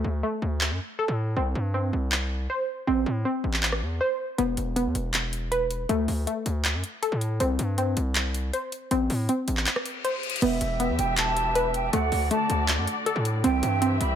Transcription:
Already playing: A3
0.04 D2
0.23 A3
0.42 D2
0.61 clap
0.70 F#2
0.99 A4
1.08 A2
1.36 C2 C4
1.55 G2
1.74 C4
1.93 C2
2.12 clap
2.50 C5
2.87 A1 C4
3.06 A2
3.25 C4
3.44 A1
3.54 clap
3.63 clap
3.72 cross-stick
3.82 E2
4.01 C5
4.38 E1 B3, closed hi-hat
4.57 E1, closed hi-hat
4.76 B3, closed hi-hat
4.86 E2
4.95 E1, closed hi-hat
5.14 clap, closed hi-hat
5.33 closed hi-hat
5.51 B4, closed hi-hat
5.71 closed hi-hat
5.89 D2 A3, closed hi-hat
6.08 D2, open hi-hat
6.27 A3, closed hi-hat
6.46 D2, closed hi-hat
6.65 clap, closed hi-hat
6.74 F#2
6.84 closed hi-hat
7.02 A4, closed hi-hat
7.12 A2
7.21 closed hi-hat
7.40 C2 C4, closed hi-hat
7.59 G2, closed hi-hat
7.78 C4, closed hi-hat
7.97 C2, closed hi-hat
8.15 clap, closed hi-hat
8.34 closed hi-hat
8.53 C5, closed hi-hat
8.72 closed hi-hat
8.91 A1 C4, closed hi-hat
9.10 A2, open hi-hat
9.29 C4, closed hi-hat
9.48 A1, closed hi-hat
9.57 clap
9.66 clap, closed hi-hat, reverse cymbal
9.76 cross-stick
9.86 closed hi-hat
10.04 C5, closed hi-hat
10.23 closed hi-hat
10.30 closed hi-hat
10.36 closed hi-hat
10.42 E1 E3 B3 G4 E5, closed hi-hat, crash
10.61 E1, closed hi-hat
10.80 B3, closed hi-hat
10.89 E2
10.98 E1 G5, closed hi-hat
11.17 A5, clap, closed hi-hat
11.37 closed hi-hat
11.55 B4, closed hi-hat
11.74 G5, closed hi-hat
11.93 D2 D3 A3 F#4 D5 F#5, closed hi-hat
12.12 D2, open hi-hat
12.31 A3 A5, closed hi-hat
12.50 D2, closed hi-hat
12.68 clap, closed hi-hat
12.78 F#2
12.87 closed hi-hat
13.06 A4, closed hi-hat
13.16 A2
13.25 closed hi-hat
13.44 C2 E3 C4 G4 E5 G5, closed hi-hat
13.63 G2, closed hi-hat
13.82 C4, closed hi-hat
14.00 C2 B5, closed hi-hat

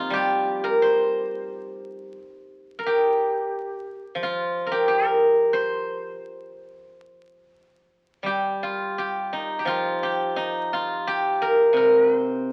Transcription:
Already playing: F3 A#3 C4 D#4 F4 G4
0.10 G3 G4
0.64 A#4
0.82 C5
2.79 A#4
2.86 G4
4.15 F3
4.23 F4
4.66 A#4
4.72 G4
4.88 A#4
5.53 C5
8.23 G3 G4
8.63 F4
8.98 G4
9.33 D#4
9.59 G4
9.65 F3 F4
10.03 G4
10.36 D#4
10.73 F4
11.07 G4
11.42 A#4
11.73 C3 A#4
12.01 B4
12.16 C5

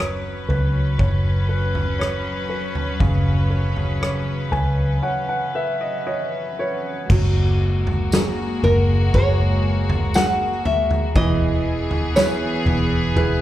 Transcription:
Already playing: F#1 F#3 C#4 B4
0.00 C#5, cross-stick
0.49 C#2 B4, floor tom
0.98 F#1 C#5, kick, floor tom
1.49 B4
1.75 floor tom
1.99 C#5, cross-stick
2.49 B4
2.75 floor tom
3.00 F#1 C#3, kick, floor tom
3.50 B4
3.76 floor tom
4.01 C#5, cross-stick
4.52 C#2 B4 G#5, floor tom
5.03 C#5 F#5
5.29 F#5
5.55 B4 E5
5.81 D#5
6.07 C#5 D#5
6.59 B4 C#5
7.09 F#1 F#3 G#3 A#3 F#4, kick, floor tom, crash
7.87 floor tom
8.12 F#4 G#4 A#4, snare, tambourine
8.63 F#1 A#4, floor tom
9.14 F#1 F#4 G#4 A#4 C#5, kick, floor tom
9.89 floor tom
10.14 F#4 G#4 A#4 F#5, snare, tambourine
10.65 E5, floor tom
10.91 floor tom
11.15 E1 E3 B3 G#4 D#5, kick, floor tom
11.91 floor tom
12.15 E4 G#4 B4 C#5, snare, tambourine
12.66 E1, floor tom
13.16 E1 E4 G#4 B4, floor tom

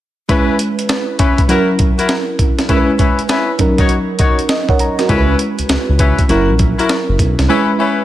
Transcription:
0.29 G#3 C#4 E4 B4, kick, closed hi-hat
0.59 closed hi-hat
0.79 closed hi-hat
0.89 snare, closed hi-hat
1.19 C#4 E4 B4, kick, closed hi-hat
1.38 kick, closed hi-hat
1.48 F#3 C#4 E4 F#4 A#4, closed hi-hat
1.79 kick, closed hi-hat
1.98 E4 F#4 A#4, closed hi-hat
2.09 snare, closed hi-hat
2.39 kick, closed hi-hat
2.59 snare, closed hi-hat
2.69 G#3 C#4 E4 A#4 B4, kick, closed hi-hat
2.77 B4
2.99 C#4 E4 B4, kick, closed hi-hat
3.19 closed hi-hat
3.29 C#4 E4 B4, snare, closed hi-hat
3.59 F#3 C#4 D#4 A#4, kick, closed hi-hat
3.78 D#4 F#4 C#5, kick, closed hi-hat
3.89 closed hi-hat
4.19 D#4 F#4 C#5, kick, closed hi-hat
4.39 closed hi-hat
4.49 D#5, snare, closed hi-hat
4.69 A#4 C#5 F#5, kick
4.79 A#5, closed hi-hat
4.99 F#4 A#4, snare, closed hi-hat
5.09 C#2 G#3 C#4 E4 A#4 B4, kick, closed hi-hat
5.18 B4
5.39 closed hi-hat
5.59 C#2, closed hi-hat
5.69 C#2, snare, closed hi-hat
5.89 C#2
5.99 C#4 E4 B4, kick, closed hi-hat
6.19 kick, closed hi-hat
6.29 F#1 F#3 C#4 E4 F#4 A#4, closed hi-hat
6.49 A#1
6.59 kick, closed hi-hat
6.78 E4 F#4 A#4, closed hi-hat
6.89 snare, closed hi-hat
7.09 F#1
7.19 B1, kick, closed hi-hat
7.39 C2, snare, closed hi-hat
7.49 G#3 C#4 E4 B4
7.79 C#4 E4 B4

